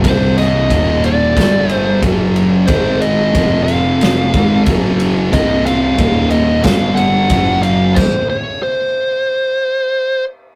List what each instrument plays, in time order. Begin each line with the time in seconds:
0.04 picked electric bass C1, distorted electric guitar C2 G2 C3, lead electric guitar C5, kick, ride
0.38 lead electric guitar D#5, snare, ride
0.70 picked electric bass D#1, distorted electric guitar D#2 A#2 D#3, kick, ride
1.04 lead electric guitar D5, ride
1.37 picked electric bass G1, distorted electric guitar G2 D3 G3, kick, snare, ride
1.69 lead electric guitar C5, ride
2.02 picked electric bass F#1, distorted electric guitar F#2 C#3 F#3, kick, ride
2.36 ride
2.67 picked electric bass G#1, distorted electric guitar G#2 D#3 G#3, lead electric guitar C5, kick, ride
3.01 lead electric guitar D#5, ride
3.35 picked electric bass F1, distorted electric guitar F2 C3 F3, kick, ride
3.64 lead electric guitar F5
3.68 ride
4.01 snare, ride
4.34 picked electric bass G#1, distorted electric guitar G#2 D#3 G#3, kick, ride
4.66 picked electric bass F#1, distorted electric guitar F#2 C#3, kick, ride
4.70 distorted electric guitar F#3
5.00 ride
5.33 picked electric bass C1, distorted electric guitar C2 G2 C3, lead electric guitar D#5, kick, ride
5.66 lead electric guitar F5, ride
5.98 picked electric bass D#1, distorted electric guitar D#2 A#2 D#3, kick, ride
6.31 lead electric guitar D#5, ride
6.64 picked electric bass G1, distorted electric guitar G2 D3 G3, lead electric guitar F5, kick, snare, ride
6.96 lead electric guitar F#5, ride
7.30 picked electric bass F#1, distorted electric guitar F#2 C#3 F#3, kick, ride
7.63 lead electric guitar F5, ride
7.95 lead electric guitar C5, kick, crash
8.29 lead electric guitar C#5
8.63 lead electric guitar C5